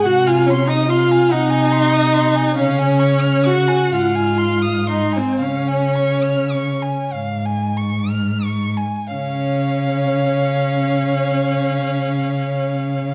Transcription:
0.04 C3 F#4 F#5
0.26 F4 F5 G#5
0.46 C#4 C#5 C6
0.67 D#4 D#5 D#6
0.88 F4 F5 C6
1.12 G#5
1.31 C3 D#4 D#5 F#5
1.50 G#5
1.72 C6
1.93 D#6
2.14 C6
2.36 G#5
2.56 C#3 C#4 C#5 F5
2.79 G#5
3.00 C#6
3.21 F6
3.45 F#4 F#5 C#6
3.68 G#5
3.91 G#2 F4 F5 F#5
4.16 G#5
4.38 C6
4.62 D#6
4.87 D#4 D#5 C6
5.13 C5 G#5
5.17 C4
5.40 C#3 C#4 C#5 F5
5.68 G#5
5.96 C#6
6.23 F6
6.53 C#6
6.82 G#5
7.13 G#2 F5
7.45 G#5
7.77 C#6
8.09 F6
8.44 C#6
8.77 G#5
9.12 C#3 C#4 C#5 F5

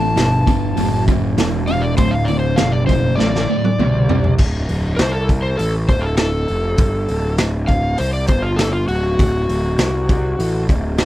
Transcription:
Already playing: A1 D2 A2 A5
0.16 G1 D2 B2, snare, open hi-hat
0.46 D2 B2, kick, open hi-hat
0.77 F#1 D2 A2, open hi-hat
1.08 D2 A2, kick, open hi-hat
1.38 E1 D2 B2, snare, open hi-hat
1.67 D2 B2 F5, open hi-hat
1.81 D5
1.97 D1 D2 A2 C5, kick, open hi-hat
2.11 F5
2.25 D5, open hi-hat
2.29 D2 A2
2.40 C5
2.56 F#1 D2 B2 F5, snare, open hi-hat
2.72 D5
2.87 D2 B2 C5, kick, open hi-hat
3.16 A1 D2 A2 D5, snare
3.35 snare
3.49 D2 A2, muted picked electric bass stroke
3.64 high tom
3.79 C2 D2 B2, mid tom
4.08 D2 B2, floor tom
4.24 floor tom
4.38 D1, kick, crash
4.68 D1, open hi-hat
4.96 C2 C5, snare, open hi-hat
5.12 A4
5.29 kick, open hi-hat
5.42 C5
5.57 A1 A4, open hi-hat
5.89 D1 C5, kick, open hi-hat
6.01 A4
6.17 A4, snare, open hi-hat
6.48 F1, open hi-hat
6.78 G1, kick, open hi-hat
7.08 D1, open hi-hat
7.38 D1, snare, open hi-hat
7.67 F5, kick, open hi-hat
7.98 C2 C5, open hi-hat
8.13 D5
8.27 G1 C5, kick, open hi-hat
8.42 F4
8.56 A4, snare, open hi-hat
8.72 F4
8.88 D1 F#4, open hi-hat
9.19 D1, kick, open hi-hat
9.49 D1, open hi-hat
9.78 C2, snare, open hi-hat
10.09 kick, open hi-hat
10.39 A1, open hi-hat
10.69 D1, kick, open hi-hat
10.98 snare, open hi-hat

